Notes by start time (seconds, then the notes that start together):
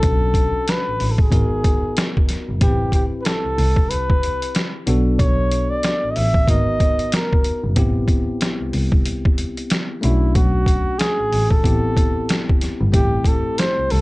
Already playing: C#4 D4 F#4 A4
0.03 B1, kick, closed hi-hat
0.34 kick, closed hi-hat
0.68 B4, snare, closed hi-hat
0.87 A1
1.00 A1, open hi-hat
1.11 A4
1.18 G#4, kick
1.30 G#1 B3 D#4 F#4 A#4, kick, closed hi-hat
1.64 kick, closed hi-hat
1.97 snare, closed hi-hat
2.17 kick
2.29 snare, closed hi-hat
2.49 F#1
2.61 A1 B3 E4 G4 B4, kick, closed hi-hat
2.68 C4
2.92 G4, kick, closed hi-hat
3.21 B4
3.25 A4, snare, closed hi-hat
3.45 C2
3.58 C2, open hi-hat
3.76 kick
3.90 B4, closed hi-hat
4.10 kick
4.23 closed hi-hat
4.42 closed hi-hat
4.55 snare, closed hi-hat
4.87 B1 B3 D4 F#4 A4, closed hi-hat
5.19 B1 C#5, kick, closed hi-hat
5.52 closed hi-hat
5.70 D5
5.83 snare, closed hi-hat
6.03 A1
6.11 D#5
6.16 A1 E5, open hi-hat
6.34 kick
6.47 G#1 A#3 D#4 F#4 A#4 D#5, kick, closed hi-hat
6.55 B3
6.80 kick, closed hi-hat
6.99 closed hi-hat
7.12 A#4, snare, closed hi-hat
7.33 kick
7.44 closed hi-hat
7.64 F#1
7.76 A1 B3 C4 E4 G4, kick, closed hi-hat
8.08 kick, closed hi-hat
8.41 snare, closed hi-hat
8.60 C2
8.73 C2, open hi-hat
8.92 kick
9.06 closed hi-hat
9.25 kick
9.38 closed hi-hat
9.57 closed hi-hat
9.70 snare, closed hi-hat
10.01 B1 A3 C#4 D4 E4 F#4, closed hi-hat
10.35 B1 F#4, kick, closed hi-hat
10.66 kick, closed hi-hat
10.99 G#4, snare, closed hi-hat
11.19 A1
11.32 A1, open hi-hat
11.50 A4, kick
11.63 A1 B3 C4 E4 G4, kick, closed hi-hat
11.97 kick, closed hi-hat
12.29 snare, closed hi-hat
12.49 kick
12.61 snare, closed hi-hat
12.81 G1
12.92 A1 A3 C4 E4 G4, kick, closed hi-hat
13.24 A4, kick, closed hi-hat
13.58 C5, snare, closed hi-hat
13.78 C2
13.90 C2 A4, open hi-hat